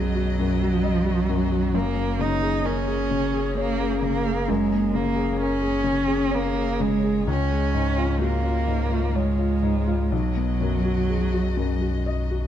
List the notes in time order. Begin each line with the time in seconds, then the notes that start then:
Already playing: B1 F#2 F#3 B3 F#4 G#4 D#5
0.15 F#4
0.39 F#2
0.62 F#4
0.83 D#5
1.06 F#4
1.29 F#2
1.52 F#4
1.74 F#1 F#2 A#3 G#4 C#5
1.95 A#3
2.19 C#3 D#4
2.42 G#4
2.65 C#4 A#4
2.88 G#4
3.11 C#3
3.34 G#4
3.57 A#3 C#5
3.80 G#4
4.02 C#3 A#3
4.26 G#4
4.48 F#1 F#2 G#3 A#3 G#4 C#5
4.73 A#3
4.95 C#3 A#3
5.16 G#4
5.39 C#4 A#4
5.61 G#4
5.84 C#3
6.08 G#4
6.31 A#3 C#5
6.55 G#4
6.80 C#3 G#3
7.03 G#4
7.27 C#2 G#3 C#4 F4
7.52 G#3
7.74 G#2
7.97 F4
8.21 A#3 F#4
8.44 F4
8.67 G#2
8.91 F4
9.15 G#3 C#5
9.39 F4
9.62 G#2
9.87 F4
10.11 B1 F#3 F#4 D#5
10.37 B3
10.61 F#2
10.85 F#4
11.09 G#4
11.34 F#4
11.57 F#2
11.81 F#4
12.06 D#5
12.31 F#4